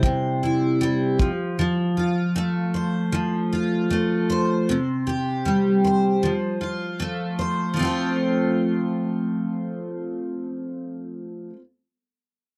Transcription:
0.00 1.27 C3 medium
0.00 0.80 G3 soft
0.00 0.42 E4 medium
0.00 2.74 C5 medium
0.00 kick medium
0.43 1.28 E4 soft
0.81 1.27 G3 medium
1.19 1.57 F3 medium
1.19 kick loud
1.59 3.11 F3 medium
1.97 3.51 F4 soft
2.36 3.89 A3 medium
2.74 4.29 C5 soft
3.12 4.75 F3 medium
3.53 4.76 F4 soft
3.90 4.76 A3 medium
4.30 5.84 C5 medium
4.69 6.31 C3 medium
5.07 6.31 G4 soft
5.45 6.31 G3 soft
5.84 7.38 C5 soft
6.23 7.73 F3 medium
6.61 7.82 F4 soft
7.00 7.76 A3 medium
7.39 7.84 C5 soft
7.74 11.50 F3 medium
7.74 11.53 A3 medium
7.80 11.56 C4 medium
7.80 11.58 F4 medium
7.85 11.61 C5 medium

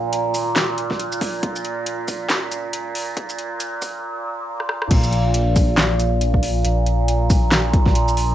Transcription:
0.00 0.33 A#1 loud
0.00 4.90 A#2 medium
0.13 closed hi-hat medium
0.34 1.20 G#1 loud
0.34 open hi-hat medium
0.34 shaker medium
0.56 snare loud
0.56 clap medium
0.56 closed hi-hat medium
0.78 closed hi-hat medium
0.91 kick medium
0.91 snare soft
0.99 closed hi-hat medium
1.12 shaker medium
1.21 kick loud
1.21 open hi-hat medium
1.43 2.28 A#1 loud
1.43 kick loud
1.43 closed hi-hat medium
1.56 shaker medium
1.65 closed hi-hat medium
1.86 closed hi-hat medium
2.08 kick medium
2.08 open hi-hat medium
2.08 shaker medium
2.30 2.94 C#2 loud
2.30 snare loud
2.30 clap medium
2.30 closed hi-hat medium
2.52 closed hi-hat medium
2.52 shaker medium
2.73 closed hi-hat medium
2.95 3.81 A#1 loud
2.95 open hi-hat medium
3.17 kick loud
3.17 closed hi-hat medium
3.29 shaker medium
3.38 closed hi-hat medium
3.60 closed hi-hat medium
3.60 shaker medium
3.82 4.04 A#1 loud
3.82 kick medium
3.82 open hi-hat medium
3.82 shaker medium
4.60 cross-stick medium
4.69 cross-stick medium
4.82 cross-stick medium
4.91 5.76 A#1 loud
4.91 8.35 A#2 medium
4.91 kick loud
4.91 closed hi-hat medium
4.91 crash loud
5.04 shaker medium
5.13 closed hi-hat medium
5.34 closed hi-hat medium
5.56 kick loud
5.56 open hi-hat medium
5.56 shaker medium
5.78 6.63 A#1 loud
5.78 snare loud
5.78 clap medium
5.78 closed hi-hat medium
6.00 closed hi-hat medium
6.00 shaker soft
6.21 closed hi-hat medium
6.34 kick medium
6.43 open hi-hat medium
6.65 7.50 A#1 loud
6.65 closed hi-hat medium
6.86 closed hi-hat medium
7.08 closed hi-hat medium
7.30 kick loud
7.30 open hi-hat medium
7.30 shaker medium
7.52 8.35 A#1 medium
7.52 snare loud
7.52 clap medium
7.52 closed hi-hat medium
7.74 kick loud
7.74 closed hi-hat medium
7.86 kick medium
7.86 snare soft
7.95 closed hi-hat medium
8.08 shaker medium
8.17 open hi-hat medium

